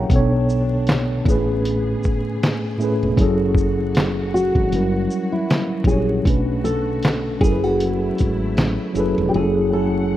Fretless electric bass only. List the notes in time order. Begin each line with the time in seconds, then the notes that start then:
0.10 B1
1.26 A1
3.03 E1
3.18 F#1
4.55 G#1
4.72 F#1
5.85 A#1
6.26 B1
7.41 F#1
8.21 G#1
8.57 A1
8.95 F#1
9.18 E1
9.34 F#1